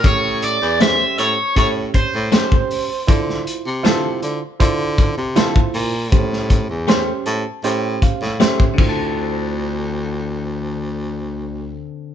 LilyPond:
<<
  \new Staff \with { instrumentName = "Overdriven electric guitar" } { \time 4/4 \key d \minor \tempo 4 = 79 cis''8 d''8 e''8 cis''8 cis''8 bis'4.~ | bis'2~ bis'8 r4. | r1 | r1 | }
  \new Staff \with { instrumentName = "Reed electric piano" } { \time 4/4 \key d \minor << { r1 | r1 | r4. a''8 g''8 f''8 e''8 r8 | r1 | } \\ { <cis' g' cis''>8. r16 <cis' g' bis'>8. r16 <cis' g' cis''>8. r16 <cis' g' bis'>8. r16 | <e' f' c''>8. r16 <e' f' c''>8. r16 <e' f' c''>8. r16 <e' f' c''>8. r16 | <cis' g' bis'>8. r16 <cis' g' bis'>8. r16 <cis' g' bis'>8. r16 <cis' g' bis'>8 <e' f' c''>8~ | <e' f' c''>1 | } >> }
  \new Staff \with { instrumentName = "Clean electric guitar" } { \time 4/4 \key d \minor r4 <a cis' g' bis'>8 r4. <a cis' g' bis'>8 r8 | r4 <d c' f' a'>8 r4. <d c' f' a'>8 r8 | r4 <a cis' g' bis'>8 r4. <a cis' g' bis'>8 <d c' a'>8~ | <d c' a'>1 | }
  \new Staff \with { instrumentName = "Baritone saxophone" } { \clef bass \time 4/4 \key d \minor a,8. e,8 r16 a,16 r16 a,8 r16 a,16 r16 a,16 r8 | d8 r16 c8. d16 r16 d8. c8 r16 bes,8 | a,8. e,8 r16 a,16 r16 a,8 r16 a,16 r16 a,16 d,8~ | d,1 | }
  \new DrumStaff \with { instrumentName = "Drums" } \drummode { \time 4/4 <hh bd>8 hh8 <hh sn>8 hh8 <hh bd>8 <hh bd>8 <hh sn>16 bd16 hho8 | <hh bd>16 sn16 hh8 <hh sn>8 hh8 <hh bd>8 <hh bd>8 <hh sn>16 bd16 hho8 | <hh bd>16 sn16 <hh bd>8 <hh sn>8 hh8 hh8 <hh bd>16 sn16 <hh sn>16 bd16 <cymc bd>8 | r4 r4 r4 r4 | }
>>